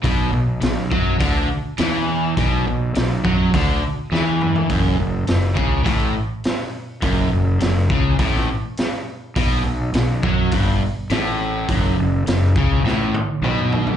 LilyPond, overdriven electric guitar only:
\new Staff \with { instrumentName = "Overdriven electric guitar" } { \clef bass \time 4/4 \key fis \dorian \tempo 4 = 103 b,8 b,8 b,8 fis8 d8 r8 e4 | b,8 b,8 b,8 fis8 d8 r8 e4 | fis,8 fis,8 fis,8 cis8 a,8 r4. | fis,8 fis,8 fis,8 cis8 a,8 r4. |
b,8 b,8 b,8 fis8 g,8 r8 a,4 | fis,8 fis,8 fis,8 cis8 a,8 r8 b,4 | }